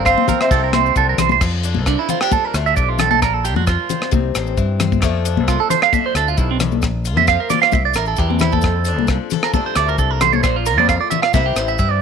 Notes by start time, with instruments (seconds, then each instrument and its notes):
Already playing: fingered electric bass G1, steel-string acoustic guitar A#2 F3 C4
0.05 trumpet C4, steel-string acoustic guitar F4, marimba C5 F5, clean electric guitar C5, kick, cross-stick, maracas
0.18 high conga
0.28 steel-string acoustic guitar F3, clean electric guitar A#4, kick, closed hi-hat, high conga, low conga, maracas
0.41 trumpet C4, clean electric guitar C5, marimba C5 E5, cross-stick, maracas
0.51 fingered electric bass C2, steel-string acoustic guitar C3 E3 C4 E4 G4, clean electric guitar A4, kick, maracas
0.64 clean electric guitar A#4
0.73 steel-string acoustic guitar E3, clean electric guitar C5, cross-stick, closed hi-hat, high conga
0.86 maracas
0.96 fingered electric bass C2, steel-string acoustic guitar D3, clean electric guitar A4, kick, maracas
1.09 clean electric guitar A#4
1.18 fingered electric bass C2, steel-string acoustic guitar E3, clean electric guitar C5, cross-stick, closed hi-hat, low conga, maracas
1.29 clean electric guitar C5, high conga, maracas
1.41 fingered electric bass F2, steel-string acoustic guitar F2, kick, cross-stick, crash, maracas
1.63 steel-string acoustic guitar D4, closed hi-hat, maracas
1.75 fingered electric bass C2, high conga
1.86 steel-string acoustic guitar F3, clean electric guitar D4, kick, cross-stick, maracas
1.99 clean electric guitar E4
2.09 steel-string acoustic guitar C4, clean electric guitar F4, closed hi-hat, low conga, maracas
2.21 steel-string acoustic guitar D4, clean electric guitar G4, cross-stick
2.31 steel-string acoustic guitar D4, clean electric guitar A4, kick, high conga, maracas
2.45 clean electric guitar A#4
2.54 fingered electric bass D2, steel-string acoustic guitar A3, clean electric guitar C5, cross-stick, closed hi-hat, maracas
2.66 clean electric guitar E5, maracas
2.76 fingered electric bass B1, steel-string acoustic guitar G2, clean electric guitar D5, kick, maracas
2.89 clean electric guitar F4
2.99 steel-string acoustic guitar A2, clean electric guitar A4, cross-stick, closed hi-hat, low conga, maracas
3.11 clean electric guitar A4, high conga, maracas
3.22 fingered electric bass A#1, steel-string acoustic guitar A#2, clean electric guitar A#4, kick, cross-stick, maracas
3.35 clean electric guitar A4
3.45 steel-string acoustic guitar F4, clean electric guitar G4, closed hi-hat, maracas
3.56 fingered electric bass F2, clean electric guitar F#4, high conga
3.67 steel-string acoustic guitar F3, clean electric guitar F4, kick, cross-stick, maracas
3.89 steel-string acoustic guitar C4, closed hi-hat, low conga, maracas
4.02 cross-stick
4.11 fingered electric bass C2, steel-string acoustic guitar C3, kick, high conga, maracas
4.35 fingered electric bass A1, steel-string acoustic guitar C4, cross-stick, closed hi-hat, maracas
4.47 maracas
4.57 fingered electric bass G2, steel-string acoustic guitar E3, kick, maracas
4.80 steel-string acoustic guitar C4, cross-stick, closed hi-hat, low conga, maracas
4.92 kick, high conga, maracas
5.02 steel-string acoustic guitar F2 F3 A3 D4 A4, fingered electric bass F2, kick, cross-stick, maracas
5.25 steel-string acoustic guitar D4, closed hi-hat, maracas
5.37 fingered electric bass C2, high conga
5.48 steel-string acoustic guitar F3, clean electric guitar F4, kick, cross-stick, maracas
5.60 clean electric guitar A4
5.70 steel-string acoustic guitar A4, clean electric guitar C5, closed hi-hat, low conga, maracas
5.82 clean electric guitar F5, cross-stick
5.93 steel-string acoustic guitar D4, clean electric guitar E5, kick, high conga, maracas
6.06 clean electric guitar C5
6.14 fingered electric bass D2, steel-string acoustic guitar A3, clean electric guitar A4, cross-stick, closed hi-hat, maracas
6.28 clean electric guitar F4, maracas
6.37 fingered electric bass B1, steel-string acoustic guitar G2, clean electric guitar E4, kick, maracas
6.51 clean electric guitar C4
6.60 steel-string acoustic guitar A2, cross-stick, closed hi-hat, low conga, maracas
6.72 high conga, maracas
6.82 fingered electric bass A#1, muted steel-string acoustic guitar stroke, kick, cross-stick, maracas
7.05 steel-string acoustic guitar F4, closed hi-hat, maracas
7.16 fingered electric bass F2, clean electric guitar E5, high conga, low conga, maracas
7.27 steel-string acoustic guitar F3, clean electric guitar F5, kick, cross-stick, maracas
7.40 clean electric guitar A#4
7.50 steel-string acoustic guitar F4, clean electric guitar D5, closed hi-hat, high conga, low conga, maracas
7.62 clean electric guitar F5, cross-stick, maracas
7.72 fingered electric bass C2, clean electric guitar E5, muted steel-string acoustic guitar stroke, kick, high conga, maracas
7.85 clean electric guitar D5
7.94 fingered electric bass A1, steel-string acoustic guitar E4, clean electric guitar A#4, cross-stick, closed hi-hat, maracas
8.06 clean electric guitar A4, maracas
8.16 fingered electric bass E2, steel-string acoustic guitar E3, clean electric guitar G4, kick, maracas
8.29 clean electric guitar C4, high conga
8.39 steel-string acoustic guitar C4, clean electric guitar E4, cross-stick, closed hi-hat, low conga, maracas
8.52 clean electric guitar A4, kick, high conga, maracas
8.61 steel-string acoustic guitar F2, fingered electric bass F2, kick, cross-stick, maracas
8.84 steel-string acoustic guitar D4, closed hi-hat, maracas
8.97 fingered electric bass C2, high conga
9.07 steel-string acoustic guitar F3, kick, cross-stick, maracas
9.30 steel-string acoustic guitar A4, closed hi-hat, low conga, maracas
9.43 clean electric guitar A#4, cross-stick
9.54 steel-string acoustic guitar C3 D4, clean electric guitar A4, kick, high conga, maracas
9.66 clean electric guitar C5
9.76 fingered electric bass D2, steel-string acoustic guitar A3, clean electric guitar D5, cross-stick, closed hi-hat, maracas
9.88 clean electric guitar A#4, maracas
9.98 fingered electric bass C2, steel-string acoustic guitar G2, clean electric guitar A4, kick, maracas
10.11 clean electric guitar A#4
10.21 steel-string acoustic guitar A2, clean electric guitar C5, cross-stick, closed hi-hat, low conga, maracas
10.33 clean electric guitar C#5, high conga, maracas
10.43 fingered electric bass A#1, steel-string acoustic guitar A#2, clean electric guitar C5, kick, cross-stick, maracas
10.56 clean electric guitar F4
10.66 steel-string acoustic guitar F4, clean electric guitar A#4, closed hi-hat, maracas
10.78 fingered electric bass F2, clean electric guitar D5, high conga
10.89 steel-string acoustic guitar A2, clean electric guitar F5, kick, cross-stick, maracas
11.01 clean electric guitar D5
11.10 steel-string acoustic guitar A#2, clean electric guitar E5, closed hi-hat, low conga, maracas
11.22 clean electric guitar F5, cross-stick
11.33 fingered electric bass C2, steel-string acoustic guitar C3 E3 C4 E4 G4, clean electric guitar E5, kick, high conga, maracas
11.46 clean electric guitar G4
11.55 fingered electric bass A1, steel-string acoustic guitar E4, clean electric guitar C5, cross-stick, closed hi-hat, maracas
11.68 clean electric guitar E5, maracas
11.78 fingered electric bass G2, steel-string acoustic guitar E3, clean electric guitar E5, kick, maracas
11.91 clean electric guitar D5